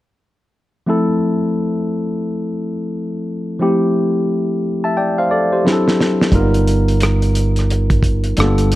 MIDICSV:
0, 0, Header, 1, 4, 480
1, 0, Start_track
1, 0, Key_signature, -1, "major"
1, 0, Tempo, 681818
1, 608, Time_signature, 4, 2, 24, 8
1, 6163, End_track
2, 0, Start_track
2, 0, Title_t, "Tine electric piano"
2, 0, Program_c, 0, 4
2, 609, Note_on_c, 0, 53, 52
2, 614, Note_on_c, 0, 57, 52
2, 618, Note_on_c, 0, 60, 51
2, 625, Note_on_c, 0, 64, 55
2, 631, Note_on_c, 0, 69, 64
2, 759, Control_c, 0, 64, 127
2, 2500, Note_off_c, 0, 53, 0
2, 2503, Note_off_c, 0, 57, 0
2, 2505, Note_off_c, 0, 60, 0
2, 2508, Note_off_c, 0, 64, 0
2, 2512, Note_off_c, 0, 69, 0
2, 2530, Note_on_c, 0, 53, 57
2, 2536, Note_on_c, 0, 57, 51
2, 2542, Note_on_c, 0, 60, 54
2, 2547, Note_on_c, 0, 64, 53
2, 2552, Note_on_c, 0, 67, 64
2, 3246, Note_off_c, 0, 67, 0
2, 3408, Note_on_c, 0, 81, 51
2, 3413, Note_on_c, 0, 76, 45
2, 3490, Note_off_c, 0, 81, 0
2, 3493, Note_off_c, 0, 76, 0
2, 3499, Note_on_c, 0, 79, 53
2, 3503, Note_on_c, 0, 74, 44
2, 3634, Note_off_c, 0, 79, 0
2, 3636, Note_off_c, 0, 74, 0
2, 3649, Note_on_c, 0, 77, 55
2, 3654, Note_on_c, 0, 72, 48
2, 3731, Note_off_c, 0, 77, 0
2, 3733, Note_off_c, 0, 72, 0
2, 3739, Note_on_c, 0, 74, 53
2, 3744, Note_on_c, 0, 69, 48
2, 3874, Note_off_c, 0, 74, 0
2, 3877, Note_off_c, 0, 69, 0
2, 3890, Note_on_c, 0, 72, 50
2, 3893, Note_on_c, 0, 67, 41
2, 3941, Note_off_c, 0, 53, 0
2, 3944, Note_off_c, 0, 57, 0
2, 3947, Note_off_c, 0, 60, 0
2, 3949, Note_off_c, 0, 64, 0
2, 3975, Note_on_c, 0, 54, 54
2, 3976, Note_on_c, 0, 60, 49
2, 3978, Control_c, 0, 64, 0
2, 3980, Note_on_c, 0, 62, 48
2, 3983, Note_on_c, 0, 64, 52
2, 3986, Note_on_c, 0, 68, 46
2, 4031, Note_on_c, 0, 69, 63
2, 4033, Note_off_c, 0, 68, 0
2, 4090, Control_c, 0, 64, 127
2, 4111, Note_off_c, 0, 72, 0
2, 4113, Note_off_c, 0, 67, 0
2, 4451, Note_off_c, 0, 54, 0
2, 4452, Note_off_c, 0, 60, 0
2, 4452, Note_on_c, 0, 55, 63
2, 4454, Note_off_c, 0, 62, 0
2, 4455, Note_off_c, 0, 64, 0
2, 4457, Control_c, 0, 64, 0
2, 4458, Note_on_c, 0, 58, 44
2, 4462, Note_on_c, 0, 63, 56
2, 4468, Note_on_c, 0, 65, 57
2, 4474, Note_on_c, 0, 70, 62
2, 4480, Note_off_c, 0, 69, 0
2, 4503, Note_on_c, 0, 59, 55
2, 4509, Note_off_c, 0, 58, 0
2, 4587, Control_c, 0, 64, 127
2, 5862, Note_off_c, 0, 55, 0
2, 5867, Note_off_c, 0, 63, 0
2, 5870, Note_off_c, 0, 65, 0
2, 5873, Note_off_c, 0, 70, 0
2, 5887, Note_off_c, 0, 59, 0
2, 5895, Note_on_c, 0, 55, 56
2, 5896, Control_c, 0, 64, 0
2, 5896, Note_on_c, 0, 58, 42
2, 5899, Note_on_c, 0, 62, 51
2, 5902, Note_on_c, 0, 65, 53
2, 5905, Note_on_c, 0, 69, 59
2, 5942, Note_on_c, 0, 59, 55
2, 5949, Note_off_c, 0, 58, 0
2, 6019, Control_c, 0, 64, 127
2, 6163, Note_off_c, 0, 55, 0
2, 6163, Note_off_c, 0, 59, 0
2, 6163, Note_off_c, 0, 62, 0
2, 6163, Note_off_c, 0, 65, 0
2, 6163, Note_off_c, 0, 69, 0
2, 6163, End_track
3, 0, Start_track
3, 0, Title_t, "Fingered electric bass"
3, 0, Program_c, 1, 33
3, 4454, Note_on_c, 1, 31, 68
3, 5863, Note_off_c, 1, 31, 0
3, 5901, Note_on_c, 1, 31, 68
3, 6163, Note_off_c, 1, 31, 0
3, 6163, End_track
4, 0, Start_track
4, 0, Title_t, "Drums"
4, 3990, Note_on_c, 9, 38, 49
4, 4060, Note_off_c, 9, 38, 0
4, 4137, Note_on_c, 9, 38, 51
4, 4208, Note_off_c, 9, 38, 0
4, 4228, Note_on_c, 9, 38, 73
4, 4298, Note_off_c, 9, 38, 0
4, 4375, Note_on_c, 9, 38, 76
4, 4446, Note_off_c, 9, 38, 0
4, 4448, Note_on_c, 9, 36, 93
4, 4452, Note_on_c, 9, 42, 65
4, 4519, Note_off_c, 9, 36, 0
4, 4522, Note_off_c, 9, 42, 0
4, 4607, Note_on_c, 9, 42, 37
4, 4677, Note_off_c, 9, 42, 0
4, 4699, Note_on_c, 9, 42, 54
4, 4770, Note_off_c, 9, 42, 0
4, 4846, Note_on_c, 9, 42, 39
4, 4917, Note_off_c, 9, 42, 0
4, 4931, Note_on_c, 9, 42, 63
4, 4952, Note_on_c, 9, 37, 84
4, 5001, Note_off_c, 9, 42, 0
4, 5022, Note_off_c, 9, 37, 0
4, 5085, Note_on_c, 9, 42, 35
4, 5155, Note_off_c, 9, 42, 0
4, 5176, Note_on_c, 9, 42, 55
4, 5246, Note_off_c, 9, 42, 0
4, 5323, Note_on_c, 9, 42, 36
4, 5343, Note_on_c, 9, 37, 27
4, 5394, Note_off_c, 9, 42, 0
4, 5413, Note_off_c, 9, 37, 0
4, 5424, Note_on_c, 9, 42, 50
4, 5494, Note_off_c, 9, 42, 0
4, 5562, Note_on_c, 9, 36, 68
4, 5563, Note_on_c, 9, 42, 40
4, 5632, Note_off_c, 9, 36, 0
4, 5634, Note_off_c, 9, 42, 0
4, 5650, Note_on_c, 9, 36, 67
4, 5658, Note_on_c, 9, 42, 56
4, 5721, Note_off_c, 9, 36, 0
4, 5729, Note_off_c, 9, 42, 0
4, 5799, Note_on_c, 9, 42, 37
4, 5869, Note_off_c, 9, 42, 0
4, 5891, Note_on_c, 9, 42, 70
4, 5914, Note_on_c, 9, 37, 95
4, 5961, Note_off_c, 9, 42, 0
4, 5985, Note_off_c, 9, 37, 0
4, 6041, Note_on_c, 9, 42, 42
4, 6111, Note_off_c, 9, 42, 0
4, 6137, Note_on_c, 9, 42, 63
4, 6163, Note_off_c, 9, 42, 0
4, 6163, End_track
0, 0, End_of_file